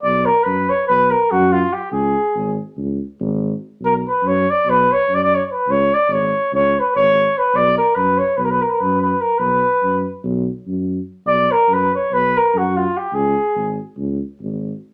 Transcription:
<<
  \new Staff \with { instrumentName = "Flugelhorn" } { \time 9/8 \tempo 4. = 96 d''8 ais'8 b'8 cis''8 b'8 ais'8 fis'8 eis'8 g'8 | gis'4. r2. | ais'8 b'8 cis''8 d''8 b'8 cis''8 d''32 r32 d''16 cis''16. cis''32 b'8 | cis''8 d''8 cis''4 cis''8 b'8 cis''4 b'8 |
d''8 ais'8 b'8 cis''8 b'32 ais'32 b'16 ais'32 b'32 ais'16 b'8 b'8 ais'8 | b'4. r2. | d''8 ais'8 b'8 cis''8 b'8 ais'8 fis'8 eis'8 g'8 | gis'4. r2. | }
  \new Staff \with { instrumentName = "Tuba" } { \clef bass \time 9/8 b,,4 fis,4 b,,4 fis,4. | cis,4 gis,,4 cis,4 gis,,4. | b,,4 fis,4 b,,4 fis,4. | cis,4 gis,,4 cis,4 gis,,4. |
b,,4 fis,4 b,,4 fis,4. | b,,4 fis,4 b,,4 fis,4. | b,,4 fis,4 b,,4 fis,4. | cis,4 gis,,4 cis,4 gis,,4. | }
>>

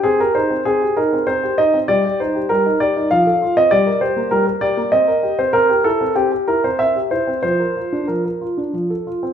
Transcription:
\new Staff \with { instrumentName = "Grand piano" } { \time 3/4 \key c \minor \tempo 4 = 98 << { aes'16 bes'16 c''8 aes'8 bes'8 c''8 ees''8 | \key c \dorian d''8 c''8 bes'8 d''8 f''8. ees''16 | d''8 c''8 bes'8 d''8 ees''8. c''16 | bes'8 a'8 g'8 bes'16 c''16 e''8 c''8 |
c''4 bes'4 r4 | } \\ { c'16 g'16 ees'16 c'16 c'16 g'16 ees'16 c'16 c'16 g'16 ees'16 c'16 | g16 g'16 ees'16 g'16 g16 ees'16 g'16 ees'16 f16 a'16 f'16 c'16 | g16 bes'16 g'16 bes16 g16 r16 g'16 bes16 c'16 bes'16 g'16 c'16 | c'16 g'16 e'16 c'16 c'16 r16 e'16 c'16 c'16 g'16 e'16 c'16 |
f16 bes'16 f'16 d'16 f16 bes'16 f'16 d'16 f16 a'16 f'16 c'16 | } >> }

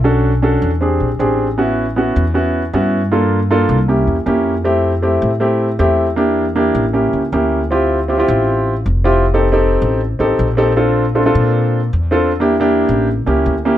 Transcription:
<<
  \new Staff \with { instrumentName = "Grand piano" } { \time 4/4 \key a \phrygian \tempo 4 = 157 <cis' d' fis' a'>8. r16 <cis' d' fis' a'>8. r16 <bis d' g' gis'>8. r16 <bis d' g' gis'>8. r16 | <b cis' e' fis'>8. r16 <b cis' e' fis'>8. r16 <b cis' e' fis'>8. r16 <b cis' e' fis'>8. r16 | <bes d' f' a'>8. r16 <bes d' f' a'>8. r16 <bes des' e' g'>8. r16 <bes des' e' g'>8. r16 | <a c' e' g'>8. r16 <a c' e' g'>8. r16 <a c' e' g'>8. r16 <a c' e' g'>8. r16 |
<bes d' e' g'>8. r16 <bes d' e' g'>8. r16 <bes cis' e' g'>8. r16 <bes cis' e' g'>8. r16 | \key d \minor <c' e' f' g'>8. r16 <c' e' f' g'>16 <c' e' f' g'>4. r8. <c' e' f' g'>8 | r16 <c' ees' g' a'>16 r16 <c' ees' g' a'>4~ <c' ees' g' a'>16 r8 <c' ees' g' a'>8. r16 <c' ees' g' a'>16 r16 | <c' d' f' a'>8. r16 <c' d' f' a'>16 <c' d' f' a'>4. r8. <c' d' f' a'>8 |
r16 <bes d' e' g'>16 r16 <bes d' e' g'>4~ <bes d' e' g'>16 r8 <bes cis' e' g'>8. r16 <bes cis' e' g'>16 r16 | }
  \new Staff \with { instrumentName = "Upright bass" } { \clef bass \time 4/4 \key a \phrygian b,,4. e,4 bes,,8 a,,4~ | a,,4. e,4. g,4~ | g,4. c,4 e,8 f,4~ | f,4. a,4. e,4~ |
e,4. a,,4 cis,8 d,4~ | \key d \minor d,4. a,,4. f,,4~ | f,,4. a,,4 a,,8 bes,,4~ | bes,,4. bes,4. e,4~ |
e,4. a,,4 cis,8 d,4 | }
>>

